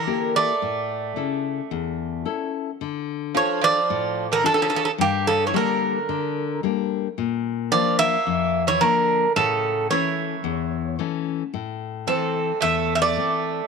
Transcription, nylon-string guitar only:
0, 0, Header, 1, 2, 480
1, 0, Start_track
1, 0, Key_signature, -1, "minor"
1, 0, Tempo, 545455
1, 546, Time_signature, 4, 2, 24, 8
1, 12030, End_track
2, 0, Start_track
2, 0, Title_t, "Nylon-string guitar"
2, 0, Program_c, 0, 24
2, 60, Note_on_c, 0, 58, 47
2, 65, Note_on_c, 0, 67, 53
2, 66, Note_on_c, 0, 64, 45
2, 447, Note_off_c, 0, 58, 0
2, 448, Note_off_c, 0, 64, 0
2, 450, Note_off_c, 0, 67, 0
2, 547, Note_on_c, 0, 45, 65
2, 1013, Note_off_c, 0, 45, 0
2, 1021, Note_on_c, 0, 49, 49
2, 1025, Note_on_c, 0, 64, 45
2, 1028, Note_on_c, 0, 69, 52
2, 1408, Note_off_c, 0, 49, 0
2, 1410, Note_off_c, 0, 64, 0
2, 1412, Note_off_c, 0, 69, 0
2, 1506, Note_on_c, 0, 40, 63
2, 1973, Note_off_c, 0, 40, 0
2, 1983, Note_on_c, 0, 61, 47
2, 1984, Note_on_c, 0, 64, 44
2, 1987, Note_on_c, 0, 69, 55
2, 2370, Note_off_c, 0, 61, 0
2, 2370, Note_off_c, 0, 64, 0
2, 2371, Note_off_c, 0, 69, 0
2, 2473, Note_on_c, 0, 50, 67
2, 2937, Note_off_c, 0, 50, 0
2, 2946, Note_on_c, 0, 62, 52
2, 2949, Note_on_c, 0, 65, 48
2, 2952, Note_on_c, 0, 69, 56
2, 3332, Note_off_c, 0, 62, 0
2, 3332, Note_off_c, 0, 65, 0
2, 3335, Note_off_c, 0, 69, 0
2, 3433, Note_on_c, 0, 45, 72
2, 3897, Note_off_c, 0, 45, 0
2, 3905, Note_on_c, 0, 62, 54
2, 3909, Note_on_c, 0, 65, 48
2, 3915, Note_on_c, 0, 69, 60
2, 4291, Note_off_c, 0, 62, 0
2, 4293, Note_off_c, 0, 65, 0
2, 4295, Note_off_c, 0, 69, 0
2, 4385, Note_on_c, 0, 43, 74
2, 4852, Note_off_c, 0, 43, 0
2, 4869, Note_on_c, 0, 55, 55
2, 4874, Note_on_c, 0, 58, 49
2, 4878, Note_on_c, 0, 62, 58
2, 5252, Note_off_c, 0, 55, 0
2, 5256, Note_off_c, 0, 58, 0
2, 5257, Note_off_c, 0, 62, 0
2, 5358, Note_on_c, 0, 50, 69
2, 5819, Note_off_c, 0, 50, 0
2, 5836, Note_on_c, 0, 55, 52
2, 5841, Note_on_c, 0, 58, 51
2, 5847, Note_on_c, 0, 62, 58
2, 6216, Note_off_c, 0, 55, 0
2, 6221, Note_off_c, 0, 58, 0
2, 6222, Note_off_c, 0, 62, 0
2, 6317, Note_on_c, 0, 46, 68
2, 6778, Note_off_c, 0, 46, 0
2, 6791, Note_on_c, 0, 53, 52
2, 6795, Note_on_c, 0, 58, 47
2, 6797, Note_on_c, 0, 62, 60
2, 7174, Note_off_c, 0, 53, 0
2, 7175, Note_off_c, 0, 58, 0
2, 7176, Note_off_c, 0, 62, 0
2, 7275, Note_on_c, 0, 41, 72
2, 7737, Note_off_c, 0, 41, 0
2, 7754, Note_on_c, 0, 53, 53
2, 7755, Note_on_c, 0, 58, 50
2, 7761, Note_on_c, 0, 62, 58
2, 8135, Note_off_c, 0, 58, 0
2, 8136, Note_off_c, 0, 53, 0
2, 8139, Note_off_c, 0, 62, 0
2, 8240, Note_on_c, 0, 45, 69
2, 8699, Note_off_c, 0, 45, 0
2, 8714, Note_on_c, 0, 52, 51
2, 8719, Note_on_c, 0, 57, 49
2, 8722, Note_on_c, 0, 61, 52
2, 9095, Note_off_c, 0, 52, 0
2, 9098, Note_off_c, 0, 57, 0
2, 9098, Note_off_c, 0, 61, 0
2, 9186, Note_on_c, 0, 40, 69
2, 9652, Note_off_c, 0, 40, 0
2, 9669, Note_on_c, 0, 52, 54
2, 9673, Note_on_c, 0, 57, 48
2, 9676, Note_on_c, 0, 61, 58
2, 10052, Note_off_c, 0, 52, 0
2, 10055, Note_off_c, 0, 57, 0
2, 10055, Note_off_c, 0, 61, 0
2, 10151, Note_on_c, 0, 45, 67
2, 10614, Note_off_c, 0, 45, 0
2, 10621, Note_on_c, 0, 52, 51
2, 10626, Note_on_c, 0, 57, 44
2, 10630, Note_on_c, 0, 60, 54
2, 11008, Note_off_c, 0, 52, 0
2, 11008, Note_off_c, 0, 57, 0
2, 11012, Note_off_c, 0, 60, 0
2, 11108, Note_on_c, 0, 40, 69
2, 11572, Note_off_c, 0, 40, 0
2, 11588, Note_on_c, 0, 52, 53
2, 11591, Note_on_c, 0, 57, 47
2, 11597, Note_on_c, 0, 60, 58
2, 11970, Note_off_c, 0, 52, 0
2, 11973, Note_off_c, 0, 57, 0
2, 11974, Note_off_c, 0, 60, 0
2, 12030, End_track
0, 0, End_of_file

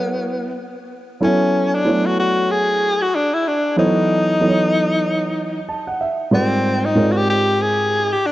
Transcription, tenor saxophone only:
0, 0, Header, 1, 2, 480
1, 0, Start_track
1, 0, Tempo, 638298
1, 914, Time_signature, 4, 2, 24, 8
1, 6256, End_track
2, 0, Start_track
2, 0, Title_t, "Tenor saxophone"
2, 0, Program_c, 0, 66
2, 0, Note_on_c, 0, 59, 94
2, 439, Note_off_c, 0, 59, 0
2, 931, Note_on_c, 0, 61, 89
2, 1312, Note_on_c, 0, 62, 81
2, 1324, Note_off_c, 0, 61, 0
2, 1550, Note_on_c, 0, 66, 84
2, 1561, Note_off_c, 0, 62, 0
2, 1641, Note_off_c, 0, 66, 0
2, 1650, Note_on_c, 0, 66, 88
2, 1887, Note_on_c, 0, 68, 99
2, 1898, Note_off_c, 0, 66, 0
2, 2267, Note_on_c, 0, 66, 86
2, 2278, Note_off_c, 0, 68, 0
2, 2370, Note_on_c, 0, 62, 86
2, 2381, Note_off_c, 0, 66, 0
2, 2509, Note_on_c, 0, 64, 80
2, 2520, Note_off_c, 0, 62, 0
2, 2612, Note_on_c, 0, 62, 81
2, 2624, Note_off_c, 0, 64, 0
2, 2843, Note_off_c, 0, 62, 0
2, 2848, Note_on_c, 0, 63, 90
2, 4251, Note_off_c, 0, 63, 0
2, 4769, Note_on_c, 0, 60, 94
2, 5152, Note_on_c, 0, 63, 88
2, 5163, Note_off_c, 0, 60, 0
2, 5355, Note_on_c, 0, 66, 69
2, 5366, Note_off_c, 0, 63, 0
2, 5388, Note_on_c, 0, 67, 90
2, 5399, Note_off_c, 0, 66, 0
2, 5480, Note_off_c, 0, 67, 0
2, 5488, Note_on_c, 0, 67, 90
2, 5730, Note_on_c, 0, 68, 98
2, 5741, Note_off_c, 0, 67, 0
2, 6111, Note_on_c, 0, 67, 89
2, 6122, Note_off_c, 0, 68, 0
2, 6214, Note_on_c, 0, 62, 94
2, 6225, Note_off_c, 0, 67, 0
2, 6256, Note_off_c, 0, 62, 0
2, 6256, End_track
0, 0, End_of_file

